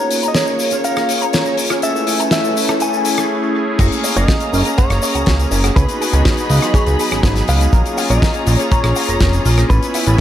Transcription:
Already playing: analog synth pad A#3 C#4 F4 G#4, violin section A#3 C#5, clean electric guitar C#5
0.11 open hi-hat, shaker
0.23 clean electric guitar A#5, closed hi-hat, shaker
0.28 clean electric guitar D#5
0.34 clean electric guitar A#4 C#5, snare, closed hi-hat, shaker
0.46 clean electric guitar A#4, shaker
0.59 analog synth pad A#3 C#4 F4 G#4, open hi-hat, shaker
0.71 clean electric guitar F4, closed hi-hat, shaker
0.83 analog synth pad A#3 C#4 F4 G#4, clean electric guitar A#4 F5, closed hi-hat, shaker
0.96 clean electric guitar A#4, cross-stick, shaker
1.09 open hi-hat, shaker
1.21 clean electric guitar A#5, closed hi-hat, shaker
1.33 clean electric guitar A#4 C#5, snare, closed hi-hat, shaker
1.45 clean electric guitar A#4, shaker
1.57 analog synth pad A#3 C#4 F4 G#4, open hi-hat, shaker
1.70 clean electric guitar F4, cross-stick, closed hi-hat, shaker
1.82 analog synth pad A3 C#4 E4 G#5, violin section A3 B4, clean electric guitar A4 E5, closed hi-hat, shaker
1.95 clean electric guitar A4, shaker
2.07 open hi-hat, shaker
2.19 clean electric guitar A5, closed hi-hat, shaker
2.31 analog synth pad A3 C#4 E4, clean electric guitar A4 E5, snare, closed hi-hat, shaker
2.44 clean electric guitar A4, shaker
2.57 open hi-hat, shaker
2.68 clean electric guitar A5, cross-stick, closed hi-hat, shaker
2.80 analog synth pad A3 C#4 E4 G#4, clean electric guitar A4 G#5, closed hi-hat, shaker
2.93 clean electric guitar A4, shaker
3.04 analog synth pad A3 C#4 E4 G#4, clean electric guitar A4, open hi-hat, shaker
3.17 clean electric guitar A4, cross-stick, closed hi-hat, shaker
3.29 analog synth pad A3 C#4 E4 G#4
3.54 analog synth pad A3 C#4 E4 G#4
3.79 analog synth bass F#1, analog synth pad A#3 C#4 G#4 F5, clean electric guitar F#4, violin section A#5, kick, closed hi-hat, crash, shaker
3.92 closed hi-hat, shaker
4.04 clean electric guitar C#5, open hi-hat, shaker
4.16 analog synth bass F#1, clean electric guitar F#4 D#5, closed hi-hat, shaker
4.28 clean electric guitar F#4, kick, snare, closed hi-hat, shaker
4.40 closed hi-hat, shaker
4.53 analog synth bass F#1, analog synth pad A#3 C#4 G#4, clean electric guitar C#4, open hi-hat, shaker
4.65 clean electric guitar A#4, closed hi-hat, shaker
4.78 analog synth bass F#1, clean electric guitar C#5 F#5, kick, closed hi-hat, shaker
4.90 analog synth bass F#1, cross-stick, closed hi-hat, shaker
5.02 clean electric guitar C#5, open hi-hat, shaker
5.14 analog synth bass C#2, analog synth pad A#3 C#4 G#4, clean electric guitar F#4, closed hi-hat, shaker
5.26 analog synth bass C#2, clean electric guitar F#4, kick, snare, closed hi-hat, shaker
5.39 closed hi-hat, shaker
5.51 analog synth bass F#1, clean electric guitar C#4, open hi-hat, shaker
5.64 clean electric guitar F#4, cross-stick, closed hi-hat, shaker
5.75 analog synth bass C#2, analog synth pad B3 D#4 F#4 G#4, clean electric guitar C#4 B4, violin section D#5 B5, kick, closed hi-hat, shaker
5.89 closed hi-hat, shaker
6.00 clean electric guitar G#4, open hi-hat, shaker
6.13 analog synth bass C#2, clean electric guitar C#4, closed hi-hat, shaker
6.25 clean electric guitar C#4, kick, snare, closed hi-hat, shaker
6.37 closed hi-hat, shaker
6.49 analog synth bass C#2, analog synth pad F#3 B3 D#4 G#4, clean electric guitar G#3, open hi-hat, shaker
6.62 clean electric guitar F4, cross-stick, closed hi-hat, shaker
6.74 clean electric guitar G#4 C#5, kick, closed hi-hat, shaker
6.86 analog synth bass C#2, closed hi-hat, shaker
6.99 clean electric guitar G#4, open hi-hat, shaker
7.11 analog synth bass G#1, analog synth pad F#3 B3 D#4 G#4, clean electric guitar C#4, cross-stick, closed hi-hat, shaker
7.23 analog synth bass G#1, clean electric guitar C#4, kick, snare, closed hi-hat, shaker
7.36 snare, closed hi-hat, shaker
7.48 analog synth bass C#2, clean electric guitar G#3 F5, open hi-hat, shaker
7.61 clean electric guitar C#4, closed hi-hat, shaker
7.72 analog synth bass A#1, analog synth pad A#3 C#4 F4 G#4, violin section G#4 C#5 A#5, clean electric guitar A#4, kick, closed hi-hat, shaker
7.86 closed hi-hat, shaker
7.98 clean electric guitar F5, open hi-hat, shaker
8.10 analog synth bass A#1, clean electric guitar A#4 D#5, closed hi-hat, shaker
8.22 clean electric guitar A#4, kick, snare, closed hi-hat, shaker
8.34 closed hi-hat, shaker
8.46 analog synth bass A#1, analog synth pad A#3 C#4 F4 G#4, clean electric guitar F4, open hi-hat, shaker
8.58 clean electric guitar C#5, closed hi-hat, shaker
8.71 analog synth bass A#1, clean electric guitar C#5 A#5, kick, closed hi-hat, shaker
8.84 analog synth bass A#1, cross-stick, closed hi-hat, shaker
8.96 clean electric guitar F5, open hi-hat, shaker
9.07 analog synth bass F1, analog synth pad A#3 C#4 F4 G#4, clean electric guitar A#4, closed hi-hat, shaker
9.20 analog synth bass F1, clean electric guitar A#4, kick, snare, closed hi-hat, shaker
9.33 closed hi-hat, shaker
9.45 analog synth bass A#1, clean electric guitar F4, open hi-hat, shaker
9.58 clean electric guitar A#4, cross-stick, closed hi-hat, shaker
9.69 analog synth bass A1, analog synth pad B3 C#4 E4 G#5, clean electric guitar A4 B4, violin section C#5 B5, kick, closed hi-hat, shaker
9.83 closed hi-hat, shaker
9.94 clean electric guitar E5, open hi-hat, shaker
10.06 analog synth bass A1, clean electric guitar A4, closed hi-hat, shaker

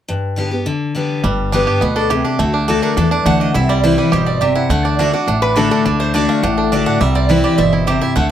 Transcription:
0.08 steel-string acoustic guitar G2
0.36 steel-string acoustic guitar D3 G3 B3 G4
0.51 steel-string acoustic guitar B3 G4
0.66 steel-string acoustic guitar D3
0.95 steel-string acoustic guitar D3 G3 B3 G4
1.24 upright bass G1, steel-string acoustic guitar G2, five-string banjo G3
1.52 steel-string acoustic guitar D3 G3 B3 G4, five-string banjo D4
1.67 five-string banjo G4
1.81 upright bass D2, steel-string acoustic guitar B2, five-string banjo B3
1.96 five-string banjo D4, steel-string acoustic guitar A4
2.10 steel-string acoustic guitar C3 G#4, five-string banjo G4
2.24 five-string banjo D4, steel-string acoustic guitar G4
2.39 upright bass D2, steel-string acoustic guitar D3 F#4, five-string banjo A3
2.53 five-string banjo D4, steel-string acoustic guitar G4
2.68 steel-string acoustic guitar D3 A3 D4 F#4 A4, five-string banjo D4
2.82 five-string banjo D4, steel-string acoustic guitar A#4
2.97 upright bass E2, steel-string acoustic guitar E3 A4, five-string banjo D4
3.11 five-string banjo D4, steel-string acoustic guitar D5
3.25 upright bass D2, steel-string acoustic guitar D3 F#5, five-string banjo A3
3.40 five-string banjo D4, steel-string acoustic guitar D#5
3.54 upright bass C2, steel-string acoustic guitar C3 E5, five-string banjo E4
3.69 five-string banjo G3, steel-string acoustic guitar D5
3.84 steel-string acoustic guitar E3 G3 C4 E4 C5, five-string banjo E4
3.98 five-string banjo G3, steel-string acoustic guitar C4 E4 B4
4.12 upright bass G1, steel-string acoustic guitar B2 C5, five-string banjo G4
4.26 five-string banjo C4, steel-string acoustic guitar D5
4.41 steel-string acoustic guitar C3 E5, five-string banjo G4
4.55 five-string banjo E4, steel-string acoustic guitar F#5
4.69 upright bass D2, steel-string acoustic guitar D3 F#5, five-string banjo A3
4.85 five-string banjo D4, steel-string acoustic guitar D5
4.99 steel-string acoustic guitar D3 A3 D4 F#4 C5, five-string banjo D4
5.13 five-string banjo D4, steel-string acoustic guitar D4 F#4 F#5
5.27 upright bass A1, steel-string acoustic guitar A2, five-string banjo D4
5.42 five-string banjo D4, resonator guitar played with a steel bar B4
5.56 steel-string acoustic guitar D3 A3 D4 F#4, five-string banjo D4, resonator guitar played with a steel bar A4
5.71 five-string banjo D4, resonator guitar played with a steel bar A4
5.85 upright bass D2, steel-string acoustic guitar D3, five-string banjo D4
6.00 five-string banjo A3, steel-string acoustic guitar C5
6.14 steel-string acoustic guitar D3 A3 D4 F#4 D5, five-string banjo D4
6.29 five-string banjo A3, steel-string acoustic guitar F5
6.43 upright bass A1, steel-string acoustic guitar A2 F#5, five-string banjo D4
6.57 five-string banjo D4, steel-string acoustic guitar A4
6.72 steel-string acoustic guitar D3 A3 D4 F#4 D5, five-string banjo D4
6.86 five-string banjo D4, steel-string acoustic guitar F#5
7.01 upright bass C2, steel-string acoustic guitar C3 E5, five-string banjo G3
7.15 five-string banjo C4, steel-string acoustic guitar D5
7.29 steel-string acoustic guitar E3 G3 C4 E4 B4, five-string banjo E4
7.44 five-string banjo G4, steel-string acoustic guitar D5
7.58 upright bass G1, steel-string acoustic guitar B2 E5, five-string banjo C4
7.73 five-string banjo E4, steel-string acoustic guitar G4
7.87 steel-string acoustic guitar C3 C5, five-string banjo G4
8.01 five-string banjo E4, steel-string acoustic guitar E5
8.16 upright bass D2, steel-string acoustic guitar D3 F#5, five-string banjo A3

